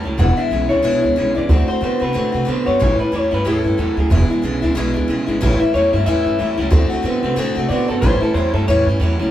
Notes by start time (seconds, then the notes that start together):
0.03 C#2 A2 F#3 G3 C#4 E4
0.18 E1 E2 B2 E3 G#3 D4 E4 F#5
0.37 E3 G#3 D4 E4 E5, muted upright bass stroke
0.51 B1 E2 C#3 E3 G#3 D4 E4
0.69 D2 E2 C#3 E3 G#3 D4 E4 C#5
0.82 B1 E2 B2 E3 G#3 D4 E4
1.01 D2 E3 G#3 D4 E4
1.16 B1 E2 C#3 E3 G#3 D4 E4
1.35 G#1 E2 C#3 E3 G#3 D4 E4 D5
1.49 D2 D3 A3 C4 F#4
1.67 A3 C4 F#4 C5
1.81 A2 D3 A3 B3 C4 F#4 C5
1.99 C3 D3 A3 B3 C4 F#4 B4
2.13 A2 D3 A3 C4 F#4
2.32 C3 A3 C4 F#4
2.45 D3 A3 B3 C4 F#4
2.66 F#2 D3 A3 B3 C4 F#4 C#5
2.80 A1 A2 E3 G3 C#4 E4
2.99 G3 C#4 E4 B4, muted upright bass stroke
3.12 E2 A2 E3 F#3 G3 C#4 E4 C#5
3.31 G2 A2 F#3 G3 C#4 E4 B4
3.45 E2 A2 E3 G3 C#4 E4 A4
3.64 G2 G3 C#4 E4
3.78 E2 A2 E3 F#3 G3 C#4 E4
3.97 D2 A2 F#3 G3 C#4 E4 G#4
4.10 E1 E2 B2 E3 G#3 D4 E4
4.29 E3 G#3 D4 E4, muted upright bass stroke
4.42 B1 E2 C#3 E3 G#3 D4 E4
4.62 D2 E2 C#3 E3 G#3 D4 E4
4.75 B1 E2 B2 E3 G#3 D4 E4
4.94 D2 E3 G#3 D4 E4
5.08 B1 E2 C#3 E3 G#3 D4 E4
5.26 G#1 E2 C#3 E3 G#3 D4 E4
5.41 A1 A2 E3 G3 C#4 E4
5.60 G3 C#4 E4 E5, muted upright bass stroke
5.74 E2 A2 E3 F#3 G3 C#4 E4 C#5
5.93 G2 A2 F#3 G3 C#4 E4 E5
6.06 E2 A2 E3 G3 C#4 E4 E5
6.25 G2 G3 C#4 E4
6.39 E2 A2 E3 F#3 G3 C#4 E4
6.57 C#2 A2 F#3 G3 C#4 E4
6.71 D2 D3 A3 C4 F#4
6.90 A3 C4 F#4, muted upright bass stroke
7.03 A2 D3 A3 B3 C4 F#4
7.23 C3 D3 A3 B3 C4 F#4
7.36 A2 D3 A3 C4 F#4
7.55 C3 A3 C4 F#4
7.69 A2 D3 A3 B3 C4 F#4 D5
7.88 G1 D3 A3 B3 C4 F#4 A4
8.01 A1 A2 E3 G3 C#4 E4 C5
8.21 G3 C#4 E4 A4, muted upright bass stroke
8.34 E2 A2 E3 F#3 G3 C#4 E4 C5
8.53 G2 A2 F#3 G3 C#4 E4 A4
8.67 E2 A2 E3 G3 C#4 E4 C#5
8.86 G2 G3 C#4 E4
9.00 E2 A2 E3 F#3 G3 C#4 E4
9.19 C#2 A2 F#3 G3 C#4 E4